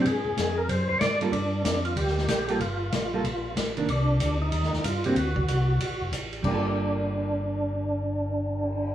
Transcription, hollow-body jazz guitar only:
X:1
M:4/4
L:1/8
Q:"Swing" 1/4=188
K:Gm
V:1 name="Hollow-body jazz guitar"
z6 z [G,B,FA] | z6 z [G,B,FA] | z3 [G,B,FA] z3 [E,B,D] | z6 z [D,B,C^F] |
z8 | [G,B,FA]8- | [G,B,FA]8 |]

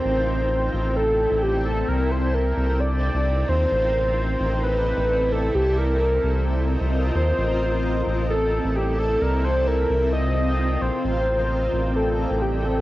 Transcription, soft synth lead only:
X:1
M:4/4
L:1/8
Q:1/4=131
K:Aphr
V:1 name="Soft synth lead"
c4 A2 G A | B c B2 d3 c- | c4 =B3 A | G B4 z2 c- |
c4 A2 G A | B c B2 _e3 c- | c4 A2 G A |]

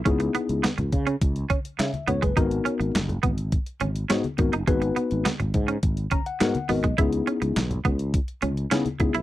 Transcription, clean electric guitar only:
X:1
M:4/4
L:1/16
Q:1/4=104
K:C#dor
V:1 name="Clean electric guitar"
C z B, z B, z2 C z2 C z3 B, G, | D z C z3 B, z3 C z C z2 D | G, z B, z B, z2 C z2 C z3 B, G, | E z C z3 B, z3 C z C z2 E |]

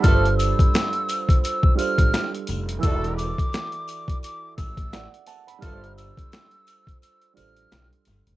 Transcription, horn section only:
X:1
M:4/4
L:1/16
Q:"Swing 16ths" 1/4=86
K:Gmix
V:1 name="Horn section"
[A,DFA]2 z12 z2 | [A,D^FA]3 z12 z | [A,DFA]2 z12 z2 |]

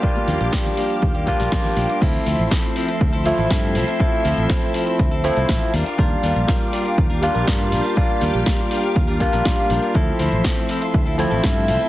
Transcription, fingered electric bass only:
X:1
M:4/4
L:1/16
Q:1/4=121
K:Dm
V:1 name="Fingered electric bass" clef=bass
z2 _E,, B,,, z4 E,,2 z B,,, B,,, z B,,, z | D,, z D,, A,,, z4 D,,2 z A,,, G,,2 C,, z | z2 D,, A,,, z4 D,,2 z C,, A,,, z _E,, z | _E,, z E,, B,,, z4 E,,2 z B,,, G,,2 B,,, z |
z2 _E,, B,,, z4 E,,2 z B,,, B,,, z B,,, z | D,, z D,, A,,, z4 D,,2 z A,,, G,,2 C,, z |]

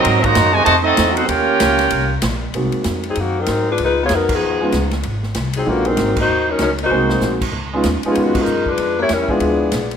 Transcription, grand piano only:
X:1
M:4/4
L:1/8
Q:"Swing" 1/4=192
K:Ebmix
V:1 name="Grand piano"
z8 | z8 | [K:Abmix] [A,B,CEG]3 z4 z | z4 z [A,_CDEF] z2 |
z4 [=G,=A,_C=DF] [_A,B,=CE_G]2 z | z4 [A,B,CEG]3 z | z [A,_CDEF] z [A,CDEF]3 z2 | z3 [A,=B,=D_F=F]3 z2 |]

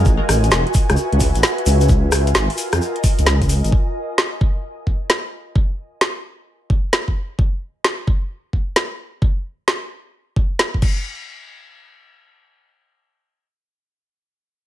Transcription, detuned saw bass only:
X:1
M:4/4
L:1/16
Q:"Swing 16ths" 1/4=131
K:Db
V:1 name="Detuned saw bass" clef=bass
=A,,, z A,,,2 =E,,, z2 ^C,, z C,,2 A,,, z2 D,,2- | D,,2 D,,2 A,,, z2 F,, z3 D,,4 A,,, | z16 | z16 |
z16 | z16 | z16 | z16 |]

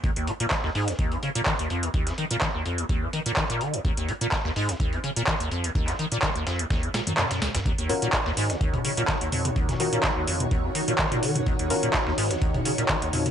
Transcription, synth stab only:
X:1
M:4/4
L:1/8
Q:"Swing 16ths" 1/4=126
K:Ebm
V:1 name="Synth stab"
z8 | z8 | z8 | z8 |
z [DFGB] z6 | z [DFGB] z6 | z [DFGB] z6 |]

